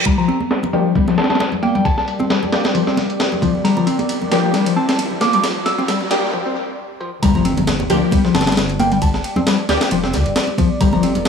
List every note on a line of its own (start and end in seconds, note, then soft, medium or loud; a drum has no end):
0.06 0.17 G3 medium
0.06 6.29 G3 medium
0.06 6.29 G4 medium
0.06 6.29 A#4 medium
0.06 6.29 D5 medium
0.06 0.14 A#5 medium
0.06 kick loud
0.06 ride medium
0.06 riser medium
0.18 0.28 F3 medium
0.18 0.25 A#5 medium
0.28 0.37 C4 loud
0.28 ride medium
0.28 muted conga medium
0.41 ride soft
0.41 high conga medium
0.51 snare loud
0.51 ride medium
0.63 muted conga medium
0.63 low conga medium
0.73 0.95 F3 medium
0.73 0.90 A#3 loud
0.73 0.91 D4 medium
0.73 0.90 G4 loud
0.73 ride medium
0.95 1.07 G3 medium
0.95 kick loud
0.95 ride medium
0.95 high conga medium
1.08 1.18 F3 medium
1.08 snare soft
1.08 muted conga medium
1.18 1.27 C4 loud
1.18 1.26 A5 medium
1.18 snare medium
1.18 ride medium
1.24 snare medium
1.24 ride medium
1.30 1.35 C4 loud
1.30 1.37 A5 medium
1.30 snare medium
1.30 ride medium
1.35 snare medium
1.35 ride medium
1.40 snare loud
1.40 ride medium
1.40 muted conga medium
1.52 ride soft
1.52 low conga medium
1.63 1.74 A#3 loud
1.63 1.71 G5 medium
1.63 ride medium
1.63 high conga medium
1.75 1.79 G3 medium
1.75 1.81 G5 medium
1.75 ride soft
1.75 low conga medium
1.85 1.93 A5 medium
1.85 kick loud
1.85 ride medium
1.85 muted conga medium
1.97 2.04 A5 medium
1.97 snare soft
2.08 ride medium
2.19 2.24 C4 loud
2.19 muted conga medium
2.19 high conga medium
2.30 2.39 G3 medium
2.30 snare loud
2.30 ride medium
2.43 low conga medium
2.52 2.64 A#3 medium
2.52 2.64 D4 medium
2.52 2.64 G4 loud
2.52 snare loud
2.52 ride medium
2.64 snare loud
2.64 ride medium
2.64 muted conga soft
2.75 2.80 F3 medium
2.75 ride medium
2.75 high conga medium
2.87 2.97 C4 medium
2.87 snare medium
2.97 snare soft
2.97 ride medium
2.97 muted conga medium
3.10 ride soft
3.20 snare loud
3.20 ride medium
3.32 low conga medium
3.42 3.51 F3 medium
3.42 kick loud
3.42 ride medium
3.42 muted conga soft
3.42 high conga loud
3.55 low conga medium
3.64 3.76 G3 medium
3.64 3.72 A#5 medium
3.64 snare soft
3.64 ride medium
3.77 3.86 F3 medium
3.77 3.83 A#5 medium
3.77 muted conga medium
3.87 3.96 C4 loud
3.87 ride medium
3.99 ride soft
3.99 high conga loud
4.09 ride medium
4.21 muted conga medium
4.21 low conga medium
4.31 4.53 F3 medium
4.31 4.49 A#3 loud
4.31 4.49 D4 medium
4.31 4.49 G4 loud
4.31 snare medium
4.31 ride medium
4.53 4.66 G3 medium
4.53 snare medium
4.53 ride medium
4.53 muted conga medium
4.53 high conga medium
4.66 4.76 F3 medium
4.66 ride medium
4.76 4.85 C4 loud
4.76 4.84 A5 medium
4.89 4.93 C4 loud
4.89 4.95 A5 medium
4.89 snare medium
4.89 ride medium
4.99 ride medium
4.99 muted conga medium
5.11 low conga medium
5.21 5.32 A#3 loud
5.21 5.29 D6 medium
5.21 snare medium
5.21 ride medium
5.21 high conga medium
5.33 5.38 G3 loud
5.33 5.40 D6 medium
5.33 ride soft
5.33 muted conga medium
5.33 low conga medium
5.44 snare medium
5.44 ride medium
5.66 6.29 E6 medium
5.66 snare medium
5.66 ride medium
5.78 5.83 C4 loud
5.78 muted conga medium
5.78 high conga loud
5.88 5.97 G3 medium
5.88 snare medium
5.88 ride medium
6.01 low conga medium
6.11 6.22 A#3 medium
6.11 6.22 D4 medium
6.11 6.22 G4 loud
6.11 snare medium
6.11 ride medium
6.11 muted conga medium
6.33 6.38 F3 medium
6.46 6.55 C4 medium
7.01 7.09 F3 medium
7.22 7.85 G1 loud
7.22 11.29 G3 medium
7.22 7.35 G3 medium
7.22 11.29 G4 medium
7.22 11.29 A#4 medium
7.22 11.29 D5 medium
7.22 7.30 A#5 medium
7.22 kick loud
7.22 ride medium
7.22 impact medium
7.35 7.45 F3 medium
7.35 7.41 A#5 medium
7.35 muted conga medium
7.45 7.54 C4 loud
7.45 ride medium
7.57 ride soft
7.57 high conga loud
7.57 low conga loud
7.67 snare loud
7.67 ride medium
7.80 muted conga medium
7.90 7.99 D2 medium
7.90 8.11 F3 medium
7.90 8.07 A#3 loud
7.90 8.07 D4 medium
7.90 8.07 G4 loud
7.90 ride medium
8.11 8.24 G3 medium
8.11 kick loud
8.11 ride medium
8.11 muted conga medium
8.11 high conga medium
8.25 8.34 F3 medium
8.25 snare soft
8.35 9.20 G1 medium
8.35 8.44 C4 loud
8.35 8.42 A5 medium
8.35 snare medium
8.35 ride medium
8.41 snare medium
8.41 ride medium
8.47 8.51 C4 loud
8.47 8.53 A5 medium
8.47 snare medium
8.47 ride medium
8.52 snare medium
8.52 ride medium
8.57 snare loud
8.57 ride medium
8.57 muted conga medium
8.70 ride soft
8.79 8.91 A#3 loud
8.79 8.87 G5 medium
8.79 ride medium
8.79 high conga medium
8.92 8.96 G3 loud
8.92 8.98 G5 medium
8.92 ride soft
8.92 muted conga medium
9.02 9.10 A5 medium
9.02 kick loud
9.02 ride medium
9.14 9.21 A5 medium
9.14 snare medium
9.24 ride medium
9.36 9.41 C4 loud
9.36 muted conga medium
9.36 high conga loud
9.36 low conga loud
9.47 9.56 G3 medium
9.47 snare loud
9.47 ride medium
9.69 9.78 D2 medium
9.69 9.81 A#3 medium
9.69 9.80 D4 medium
9.69 9.80 G4 loud
9.69 snare loud
9.69 ride medium
9.69 muted conga medium
9.81 snare loud
9.81 ride medium
9.91 10.15 F1 medium
9.91 9.97 F3 medium
9.91 ride medium
9.91 high conga medium
10.04 10.13 C4 medium
10.04 snare medium
10.13 10.23 D2 medium
10.13 snare soft
10.13 ride medium
10.13 muted conga medium
10.26 10.33 G1 loud
10.26 ride soft
10.36 snare loud
10.36 ride medium
10.47 muted conga medium
10.58 10.67 F3 medium
10.58 kick loud
10.58 ride medium
10.58 high conga medium
10.81 11.29 G1 loud
10.81 10.93 G3 medium
10.81 10.89 A#5 medium
10.81 kick loud
10.81 ride medium
10.93 11.03 F3 medium
10.93 10.99 A#5 medium
10.93 muted conga medium
11.03 11.12 C4 loud
11.03 ride medium
11.15 ride soft
11.15 high conga loud
11.15 low conga loud
11.25 snare loud
11.25 ride medium
11.25 muted conga medium